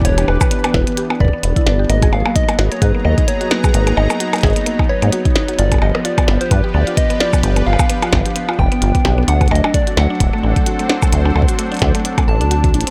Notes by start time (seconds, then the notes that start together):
Already playing: E3 B3 D4 G4 B4
0.01 E1 B3 C#5, kick, closed hi-hat
0.09 kick
0.18 G4, closed hi-hat, percussion blips
0.28 E1 B3 B4, percussion blips
0.41 B4, kick, percussion blips, shaker
0.51 B3, closed hi-hat
0.64 B3, closed hi-hat, percussion blips
0.74 E1 E4, kick, snare
0.87 B3, closed hi-hat
0.97 G4, closed hi-hat
1.10 B3, percussion blips
1.20 D1 B4 D5, kick
1.25 kick
1.28 kick
1.33 B3
1.43 E1 B3, closed hi-hat
1.56 E4, kick, closed hi-hat
1.66 G1 B3, snare
1.79 G4
1.89 G#1 F#3 A#3 D#5, closed hi-hat
2.02 G#4, kick, closed hi-hat, percussion blips
2.13 G#1 A#3 F5, percussion blips
2.25 A#3, percussion blips
2.36 D#4 D#5, kick, closed hi-hat
2.40 D#4
2.46 A#3 G#4 A#5, closed hi-hat, percussion blips
2.59 G#1 F#4, snare
2.72 A#3 C#5, closed hi-hat
2.82 G#2 G#4 B4, kick, closed hi-hat
2.95 A#3
3.05 D#2 A#3 D#5
3.18 D#4, kick, closed hi-hat
3.28 A#3 C#5, closed hi-hat
3.41 F#4, closed hi-hat
3.51 A#3 B4, snare
3.64 G#4, kick, percussion blips, shaker
3.74 G#1 A#3, closed hi-hat
3.87 A#3, closed hi-hat, percussion blips
3.97 G#1 D#4 D#5, percussion blips
4.10 A#3, percussion blips, shaker
4.20 F#4, closed hi-hat
4.33 A#3, closed hi-hat, percussion blips
4.36 closed hi-hat
4.41 G#1 G#4, kick, snare, closed hi-hat
4.47 closed hi-hat
4.50 closed hi-hat
4.53 A#3, closed hi-hat
4.56 closed hi-hat
4.66 A#3, closed hi-hat
4.79 D#4, kick, percussion blips
4.89 B4 C#5
5.02 G#2 A#3, closed hi-hat
5.13 F#4, closed hi-hat
5.25 D#4, kick, closed hi-hat
5.36 D#4, snare
5.48 F#4, closed hi-hat
5.59 G1 F3 F4 D5, closed hi-hat
5.72 B3, kick, closed hi-hat, percussion blips
5.74 percussion blips
5.78 G4, percussion blips
5.82 G1 D#5, percussion blips
5.86 percussion blips
5.90 percussion blips
5.95 B3 G4, percussion blips
6.05 D4 F4 D5, closed hi-hat
6.18 B3, kick, closed hi-hat, percussion blips
6.28 G1 B3, snare
6.41 F4 C5, closed hi-hat
6.45 B4
6.51 G2 B3 B4, kick, closed hi-hat
6.64 G4
6.74 D2 B3 D5
6.87 F4, closed hi-hat
6.97 B3 D#5, kick, closed hi-hat
7.10 B3, closed hi-hat
7.20 F4 D5, snare
7.33 B3, kick, percussion blips, shaker
7.43 G1 G4, closed hi-hat
7.56 B3, closed hi-hat, percussion blips
7.66 G1 F4 F5
7.73 percussion blips
7.79 B3, kick, percussion blips, shaker
7.89 B3, closed hi-hat
8.02 F4, closed hi-hat, percussion blips
8.13 G1 B3, kick, snare
8.26 G4, closed hi-hat
8.36 B3, closed hi-hat
8.49 F4, percussion blips
8.59 F1 B3 G5, kick
8.72 B3, closed hi-hat
8.82 G1 F4, closed hi-hat
8.95 B3, kick, closed hi-hat
9.05 B1 G4, snare
9.18 B3
9.28 D2 F#3 D4 F#5, closed hi-hat
9.41 A3, kick, closed hi-hat, percussion blips
9.48 D2 A3 D#5, closed hi-hat, percussion blips
9.55 C4, closed hi-hat
9.64 D4, percussion blips
9.74 A3 A4 D5, kick, closed hi-hat
9.87 F#4, closed hi-hat
9.97 D2 A3 F#5, snare
10.10 D4
10.20 D1 A3, kick, closed hi-hat
10.31 A3 C5
10.43 A1 D4
10.56 A3, kick, closed hi-hat
10.66 F#4, closed hi-hat
10.79 A3, closed hi-hat
10.89 D4, snare
11.02 A3, kick, percussion blips, shaker
11.12 D2 A3, closed hi-hat
11.25 D4, percussion blips
11.36 D2 A3, percussion blips
11.42 kick
11.49 F#4, closed hi-hat, shaker
11.59 A3, closed hi-hat
11.72 D4, closed hi-hat
11.74 closed hi-hat
11.77 closed hi-hat
11.79 D2 A3, kick, snare, closed hi-hat
11.95 A3, closed hi-hat
12.05 D4, closed hi-hat
12.18 A3, kick, closed hi-hat, percussion blips
12.28 A1 A4 A5
12.41 D2 D4, closed hi-hat
12.51 F#4, closed hi-hat
12.64 A3, kick, closed hi-hat
12.74 A1 D4, closed hi-hat
12.81 closed hi-hat
12.87 C4, closed hi-hat